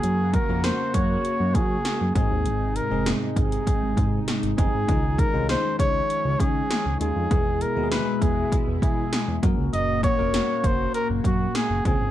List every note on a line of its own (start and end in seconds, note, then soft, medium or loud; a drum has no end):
0.00 0.38 F#2 loud
0.00 2.13 C#3 medium
0.00 0.34 A#3 medium
0.00 2.13 A#3 medium
0.00 0.34 C#4 medium
0.00 0.34 F#4 medium
0.00 2.13 F#4 medium
0.00 0.36 G#4 medium
0.00 0.38 A#4 medium
0.00 closed hi-hat medium
0.34 0.66 A#4 medium
0.34 kick medium
0.34 closed hi-hat medium
0.49 0.72 F2 medium
0.49 1.26 A#3 medium
0.49 1.26 C#4 medium
0.49 1.26 F#4 medium
0.49 1.27 A#4 medium
0.64 0.96 C5 medium
0.64 snare loud
0.64 closed hi-hat medium
0.94 1.17 F#2 medium
0.94 1.57 C#5 loud
0.94 kick medium
0.94 closed hi-hat medium
1.25 closed hi-hat medium
1.40 1.56 F#2 loud
1.54 1.77 F#3 loud
1.54 2.15 G#4 medium
1.54 kick medium
1.54 closed hi-hat medium
1.85 snare loud
1.85 closed hi-hat medium
2.01 2.12 F#2 medium
2.15 2.27 G#1 loud
2.15 3.02 G#2 medium
2.15 4.86 C3 medium
2.15 2.76 G#3 medium
2.15 4.86 G#3 medium
2.15 2.76 C4 medium
2.15 2.76 D#4 medium
2.15 7.27 D#4 medium
2.15 2.78 G#4 medium
2.15 2.76 G#4 medium
2.15 kick loud
2.15 closed hi-hat medium
2.31 2.47 D#2 medium
2.46 2.80 G#1 loud
2.46 closed hi-hat medium
2.76 3.10 A#4 medium
2.76 closed hi-hat medium
2.90 3.14 F1 medium
2.90 3.68 G#3 medium
2.90 3.68 C4 medium
2.90 3.69 D#4 medium
2.90 3.69 G#4 medium
3.06 snare loud
3.06 closed hi-hat medium
3.36 3.59 G#1 medium
3.36 4.24 G#4 medium
3.36 kick medium
3.36 closed hi-hat medium
3.52 closed hi-hat soft
3.67 kick medium
3.67 closed hi-hat medium
3.83 3.94 G#1 loud
3.97 4.20 G#2 medium
3.97 kick medium
3.97 closed hi-hat medium
4.28 snare loud
4.28 closed hi-hat medium
4.43 4.55 G#1 medium
4.43 closed hi-hat soft
4.57 4.69 F#1 medium
4.57 4.77 G#3 medium
4.57 4.77 C4 medium
4.57 4.77 D#4 medium
4.57 5.21 G#4 medium
4.57 4.77 G#4 medium
4.57 kick medium
4.57 closed hi-hat medium
4.74 4.85 G#1 medium
4.88 5.23 C#2 loud
4.88 5.75 D#3 medium
4.88 7.28 F3 medium
4.88 5.17 G#3 medium
4.88 5.17 C#4 medium
4.88 7.28 C#4 medium
4.88 5.17 D#4 medium
4.88 5.18 F4 medium
4.88 kick loud
4.88 closed hi-hat medium
5.18 5.49 A#4 medium
5.18 kick medium
5.18 closed hi-hat medium
5.33 5.57 C2 medium
5.33 6.11 G#3 medium
5.33 6.11 C#4 medium
5.33 6.11 D#4 medium
5.33 6.11 F4 medium
5.49 5.78 C5 loud
5.49 snare loud
5.49 closed hi-hat medium
5.79 6.02 C#2 medium
5.79 6.42 C#5 loud
5.79 kick medium
5.79 closed hi-hat medium
6.10 closed hi-hat medium
6.25 6.36 C#2 loud
6.40 6.63 C#3 medium
6.40 7.01 G#4 medium
6.40 kick medium
6.40 closed hi-hat medium
6.71 snare loud
6.71 closed hi-hat medium
6.86 6.97 C#2 medium
7.00 7.12 D#2 medium
7.00 7.19 G#3 medium
7.00 7.20 C#4 medium
7.00 7.20 D#4 medium
7.00 7.20 F4 medium
7.00 7.64 G#4 medium
7.00 closed hi-hat medium
7.16 7.27 F2 medium
7.31 7.65 E2 medium
7.31 8.18 B2 medium
7.31 9.41 B2 medium
7.31 7.60 G#3 medium
7.31 9.41 G#3 medium
7.31 7.60 B3 medium
7.31 7.60 E4 medium
7.31 9.41 E4 medium
7.31 7.60 G#4 medium
7.31 kick loud
7.31 closed hi-hat medium
7.61 7.91 A#4 medium
7.61 closed hi-hat medium
7.76 7.99 D#2 medium
7.76 8.53 G#3 medium
7.76 8.53 B3 medium
7.76 8.54 E4 medium
7.76 7.83 F#4 medium
7.83 8.57 G#4 medium
7.92 8.24 B4 medium
7.92 snare loud
7.92 closed hi-hat medium
8.22 8.44 E2 medium
8.22 8.56 G#4 medium
8.22 kick medium
8.22 closed hi-hat medium
8.52 kick medium
8.52 closed hi-hat medium
8.68 8.79 E2 medium
8.82 9.05 E3 medium
8.82 9.39 G#4 medium
8.82 kick medium
8.82 closed hi-hat medium
9.13 snare loud
9.13 closed hi-hat medium
9.28 9.39 E2 medium
9.41 9.54 F#2 loud
9.41 12.11 A#2 medium
9.41 11.82 A#3 medium
9.41 10.03 A#3 medium
9.41 10.03 C#4 medium
9.41 11.82 F#4 medium
9.41 10.04 F#4 medium
9.41 10.04 A#4 medium
9.41 kick loud
9.41 closed hi-hat medium
9.58 9.69 C#2 medium
9.73 10.08 F#1 medium
9.73 10.02 D#5 loud
9.73 closed hi-hat medium
10.03 10.68 C#5 loud
10.03 kick medium
10.03 closed hi-hat medium
10.18 10.42 F1 medium
10.18 10.95 A#3 medium
10.18 10.96 C#4 medium
10.18 10.96 F#4 medium
10.18 10.96 A#4 medium
10.34 snare loud
10.34 closed hi-hat medium
10.64 10.87 F#1 medium
10.64 10.94 C5 medium
10.64 kick medium
10.64 closed hi-hat medium
10.94 11.08 A#4 medium
10.94 closed hi-hat medium
11.10 11.21 F#1 loud
11.24 11.47 F#2 medium
11.24 11.57 F#4 medium
11.24 kick medium
11.24 closed hi-hat medium
11.55 11.86 G#4 medium
11.55 snare loud
11.55 closed hi-hat medium
11.70 11.81 F#1 medium
11.85 11.97 C#2 loud
11.85 12.11 C#3 medium
11.85 12.11 C4 medium
11.85 12.11 C#4 medium
11.85 12.11 F4 medium
11.85 12.11 G#4 medium
11.85 12.11 C5 medium
11.85 kick loud
11.85 closed hi-hat medium
12.01 12.11 G#1 medium